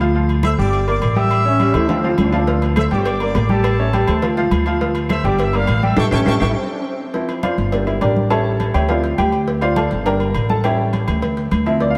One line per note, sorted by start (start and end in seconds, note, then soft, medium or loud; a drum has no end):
0.00 0.53 D2 loud
0.00 0.12 F3 loud
0.00 0.12 F4 loud
0.00 0.13 F5 loud
0.00 high conga soft
0.00 low agogo medium
0.14 0.39 F3 medium
0.14 0.39 F4 medium
0.14 0.39 F5 medium
0.14 high conga soft
0.29 high conga soft
0.29 low agogo medium
0.43 0.56 A3 medium
0.43 0.56 A4 medium
0.43 0.56 C5 medium
0.43 0.51 E5 loud
0.43 0.51 E6 medium
0.43 high conga loud
0.43 low agogo loud
0.43 claves medium
0.58 0.99 G1 medium
0.58 0.82 G3 medium
0.58 0.82 G4 medium
0.58 0.86 D5 loud
0.58 0.83 G5 medium
0.58 0.86 D6 medium
0.58 high conga soft
0.73 high conga soft
0.73 low agogo medium
0.87 1.11 A#3 medium
0.87 1.11 A#4 medium
0.87 1.12 D5 medium
0.87 1.15 D5 loud
0.87 1.15 D6 medium
0.87 high conga soft
0.87 low agogo medium
1.02 1.69 A1 loud
1.02 high conga soft
1.02 low agogo loud
1.02 claves medium
1.16 1.40 G3 medium
1.16 1.40 G4 loud
1.16 2.04 E5 loud
1.16 1.40 G5 loud
1.16 2.04 E6 medium
1.16 high conga medium
1.31 high conga soft
1.31 low agogo loud
1.31 claves medium
1.45 1.72 C#4 loud
1.45 1.57 C#4 medium
1.45 1.58 C#5 medium
1.45 1.58 E5 medium
1.45 high conga soft
1.60 1.72 G3 medium
1.60 1.72 G4 medium
1.60 1.72 G5 medium
1.60 high conga medium
1.60 low agogo medium
1.74 2.15 D2 medium
1.74 1.86 A3 medium
1.74 1.89 E4 loud
1.74 1.87 A4 medium
1.74 1.87 C5 medium
1.74 high conga soft
1.74 low conga medium
1.74 low agogo loud
1.74 claves medium
1.89 2.01 F3 medium
1.89 2.02 C4 loud
1.89 2.01 F4 medium
1.89 2.01 F5 medium
1.89 high conga soft
1.89 low conga medium
1.89 high timbale medium
1.89 low agogo medium
2.03 2.28 F3 loud
2.03 2.10 C4 medium
2.03 2.28 F4 medium
2.03 2.28 F5 medium
2.03 high conga soft
2.18 2.86 D2 loud
2.18 2.66 D4 medium
2.18 high conga medium
2.18 low agogo loud
2.18 claves medium
2.32 2.45 F3 medium
2.32 2.45 F4 medium
2.32 2.45 F5 medium
2.32 high conga soft
2.32 low timbale medium
2.32 low agogo medium
2.47 2.71 F3 medium
2.47 2.71 F4 medium
2.47 2.72 F5 medium
2.47 cowbell loud
2.47 high conga soft
2.62 cowbell medium
2.62 high conga soft
2.62 low agogo medium
2.76 2.88 A3 medium
2.76 2.89 A4 medium
2.76 2.89 C5 medium
2.76 2.84 E5 loud
2.76 2.84 E6 medium
2.76 cowbell medium
2.76 high conga loud
2.76 low agogo loud
2.76 claves medium
2.91 3.32 G1 medium
2.91 3.15 G3 medium
2.91 3.15 G4 loud
2.91 2.99 D5 medium
2.91 3.15 G5 medium
2.91 2.98 D6 medium
2.91 cowbell medium
2.91 high conga soft
2.99 3.06 C5 medium
3.05 3.21 D5 loud
3.05 3.21 D6 medium
3.05 cowbell loud
3.05 high conga soft
3.05 low agogo medium
3.20 3.44 A#3 medium
3.20 3.45 A#4 medium
3.20 3.45 D5 medium
3.20 3.49 D5 loud
3.20 3.49 D6 medium
3.20 high conga soft
3.20 low agogo medium
3.35 4.02 A1 loud
3.35 cowbell medium
3.35 high conga soft
3.35 low timbale medium
3.35 low agogo loud
3.35 claves medium
3.49 3.73 G3 loud
3.49 3.74 G4 loud
3.49 4.34 A4 medium
3.49 3.74 G5 loud
3.49 4.34 A5 medium
3.49 high conga medium
3.64 cowbell loud
3.64 high conga soft
3.64 low agogo loud
3.64 claves medium
3.79 3.91 C#4 medium
3.79 3.91 C#5 medium
3.79 3.91 E5 medium
3.79 high conga soft
3.93 4.05 G3 medium
3.93 4.06 G4 medium
3.93 4.06 G5 medium
3.93 cowbell medium
3.93 high conga medium
3.93 low agogo medium
4.07 4.48 D2 medium
4.07 4.20 A3 medium
4.07 4.20 A4 medium
4.07 4.20 C5 medium
4.07 cowbell medium
4.07 high conga soft
4.07 low conga medium
4.07 low agogo loud
4.07 claves medium
4.22 4.34 F3 medium
4.22 4.35 F4 medium
4.22 4.35 F5 medium
4.22 cowbell loud
4.22 high conga soft
4.22 low conga medium
4.22 low agogo medium
4.37 4.61 F3 loud
4.37 4.61 F4 loud
4.37 4.61 F5 loud
4.37 cowbell medium
4.37 high conga soft
4.51 5.19 D2 medium
4.51 cowbell medium
4.51 high conga loud
4.51 low agogo loud
4.51 claves medium
4.66 4.78 F3 loud
4.66 4.78 F4 loud
4.66 4.79 F5 loud
4.66 high conga soft
4.66 low agogo medium
4.81 5.05 F3 medium
4.81 5.05 F4 medium
4.81 5.05 F5 medium
4.81 cowbell loud
4.81 high conga soft
4.95 cowbell medium
4.95 high conga soft
4.95 low agogo medium
5.09 5.22 A3 medium
5.09 5.22 A4 medium
5.09 5.22 C5 medium
5.09 5.24 E5 loud
5.09 5.24 E6 medium
5.09 cowbell medium
5.09 high conga loud
5.09 low agogo loud
5.09 claves medium
5.24 5.65 G1 loud
5.24 5.48 G3 medium
5.24 5.49 G4 medium
5.24 5.39 D5 medium
5.24 5.49 G5 loud
5.24 5.39 D6 medium
5.24 cowbell medium
5.24 high conga soft
5.39 5.53 E5 loud
5.39 5.54 E6 medium
5.39 cowbell loud
5.39 high conga soft
5.39 low agogo medium
5.53 5.78 A#3 medium
5.53 5.78 A#4 medium
5.53 5.78 D5 medium
5.53 5.84 F5 medium
5.53 high conga soft
5.53 low agogo medium
5.67 5.95 A1 loud
5.67 cowbell medium
5.67 high conga soft
5.67 low agogo loud
5.67 claves medium
5.83 5.95 G3 loud
5.83 5.95 G4 medium
5.83 5.97 E5 medium
5.83 5.95 G5 loud
5.83 5.97 E6 medium
5.83 high conga medium
5.96 6.08 A1 loud
5.96 6.07 E4 loud
5.96 6.07 G4 loud
5.96 6.07 A4 loud
5.96 6.05 G5 loud
5.96 6.05 A5 medium
5.96 6.05 C#6 loud
5.96 cowbell medium
5.96 high conga loud
5.96 high timbale loud
5.96 claves loud
6.11 6.23 A1 loud
6.11 6.36 C#4 loud
6.11 6.22 E4 loud
6.11 6.22 G4 loud
6.11 6.22 A4 medium
6.11 6.19 G5 loud
6.11 6.20 A5 loud
6.11 6.20 C#6 loud
6.11 cowbell loud
6.11 high conga loud
6.11 high timbale loud
6.11 claves medium
6.26 6.37 A1 loud
6.26 6.36 E4 loud
6.26 6.36 G4 loud
6.26 6.36 A4 loud
6.26 6.34 G5 loud
6.26 6.34 A5 loud
6.26 6.34 C#6 medium
6.26 cowbell loud
6.26 high conga loud
6.26 high timbale loud
6.26 claves loud
6.38 6.52 A1 loud
6.38 6.41 F4 medium
6.38 6.48 G5 loud
6.38 6.48 A5 medium
6.38 6.48 C#6 medium
6.38 cowbell loud
6.38 high conga loud
6.38 high timbale loud
6.38 claves loud
6.42 6.56 E4 loud
6.42 6.51 E4 medium
6.42 6.51 G4 loud
6.42 6.51 A4 medium
6.56 6.70 C4 loud
6.70 6.84 D4 medium
6.84 7.14 C4 medium
7.13 7.55 F3 medium
7.13 7.56 C4 medium
7.13 7.56 E4 medium
7.13 cowbell loud
7.13 high conga soft
7.29 cowbell medium
7.29 high conga soft
7.29 low agogo medium
7.43 7.84 F4 medium
7.43 7.84 C5 medium
7.43 7.84 D5 medium
7.43 7.84 F5 medium
7.43 cowbell medium
7.43 high conga loud
7.43 low agogo loud
7.57 7.98 G1 medium
7.57 cowbell medium
7.57 high conga soft
7.72 8.14 G3 medium
7.72 8.14 A#3 soft
7.72 8.00 D4 medium
7.72 cowbell loud
7.72 high conga soft
7.72 low agogo medium
7.87 8.01 E4 medium
7.87 8.01 E5 medium
7.87 high conga soft
7.87 low agogo medium
8.01 8.69 A1 loud
8.01 8.29 D4 medium
8.01 8.29 G4 medium
8.01 8.29 A#4 medium
8.01 8.29 D5 medium
8.01 cowbell medium
8.01 high conga soft
8.01 low agogo loud
8.16 high conga medium
8.30 8.86 G3 medium
8.30 8.86 C#4 medium
8.30 8.86 E4 medium
8.30 8.72 A4 medium
8.30 8.72 C#5 medium
8.30 8.72 E5 medium
8.30 8.71 A5 loud
8.30 cowbell loud
8.30 high conga soft
8.30 low agogo loud
8.46 high conga soft
8.60 cowbell medium
8.60 high conga medium
8.60 low agogo medium
8.74 9.15 D2 medium
8.74 8.89 G4 medium
8.74 8.89 C#5 medium
8.74 8.89 E5 medium
8.74 8.89 G5 medium
8.74 cowbell medium
8.74 high conga soft
8.74 low conga medium
8.74 low agogo loud
8.89 9.08 F3 medium
8.89 9.09 C4 soft
8.89 9.09 E4 medium
8.89 9.17 F4 medium
8.89 9.17 C5 medium
8.89 9.17 D5 medium
8.89 9.16 F5 medium
8.89 cowbell loud
8.89 high conga soft
8.89 low agogo medium
9.04 cowbell medium
9.04 high conga soft
9.18 9.86 D2 medium
9.18 9.59 G4 medium
9.18 9.59 G5 loud
9.18 cowbell medium
9.18 high conga medium
9.18 low agogo loud
9.32 high conga soft
9.32 low agogo medium
9.47 cowbell loud
9.47 high conga soft
9.61 9.76 F4 medium
9.61 9.76 C5 medium
9.61 9.76 D5 medium
9.61 9.76 F5 medium
9.61 cowbell medium
9.61 high conga soft
9.61 low agogo medium
9.76 10.04 A4 medium
9.76 10.04 D5 medium
9.76 10.04 F5 medium
9.76 10.04 A5 medium
9.76 cowbell medium
9.76 high conga medium
9.76 low agogo loud
9.91 10.32 G1 medium
9.91 cowbell medium
9.91 high conga soft
10.06 10.25 G3 medium
10.06 10.26 A#3 medium
10.06 10.26 D4 medium
10.06 10.47 A#4 medium
10.06 10.47 D5 medium
10.06 10.47 G5 medium
10.06 10.47 A#5 medium
10.06 cowbell loud
10.06 high conga soft
10.06 low agogo medium
10.20 high conga soft
10.20 low agogo medium
10.34 11.03 A1 medium
10.34 cowbell medium
10.34 high conga soft
10.34 low agogo loud
10.50 10.64 A4 medium
10.50 10.64 A5 loud
10.50 high conga medium
10.64 11.20 G3 medium
10.64 11.20 C#4 medium
10.64 11.20 E4 medium
10.64 10.92 G4 medium
10.64 10.92 C#5 medium
10.64 10.92 E5 medium
10.64 10.92 G5 medium
10.64 cowbell loud
10.64 high conga soft
10.64 low agogo loud
10.79 high conga soft
10.93 cowbell medium
10.93 high conga medium
10.93 low agogo medium
11.08 11.49 D2 loud
11.08 cowbell medium
11.08 high conga soft
11.08 low conga medium
11.08 low agogo loud
11.22 cowbell loud
11.22 high conga soft
11.22 low conga medium
11.22 low agogo medium
11.37 cowbell medium
11.37 high conga soft
11.51 11.98 D2 loud
11.51 cowbell medium
11.51 high conga medium
11.51 low agogo loud
11.66 11.98 F3 medium
11.66 11.98 C4 medium
11.66 11.98 E4 medium
11.66 11.81 E5 medium
11.66 high conga soft
11.66 low agogo medium
11.80 11.91 D5 medium
11.80 cowbell loud
11.80 high conga soft
11.90 11.98 F5 medium